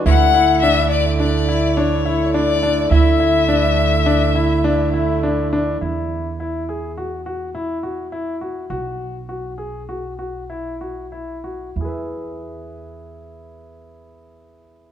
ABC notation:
X:1
M:5/4
L:1/8
Q:1/4=103
K:Emix
V:1 name="Violin"
f2 e d d2 c2 d2 | e8 z2 | z8 z2 | z8 z2 |
z8 z2 |]
V:2 name="Grand piano"
E E D2 D E D E D D | E E D2 D E D E D D | E2 E G F F E F E F | F2 F G F F E F E F |
[EGBe]8- [EGBe]2 |]
V:3 name="Harmonium"
[D,A,E]8- [D,A,E]2- | [D,A,E]8- [D,A,E]2 | z8 z2 | z8 z2 |
z8 z2 |]
V:4 name="Upright bass" clef=bass
D,,8- D,,2 | D,,8- D,,2 | E,,8- E,,2 | B,,,8- B,,,2 |
E,,8- E,,2 |]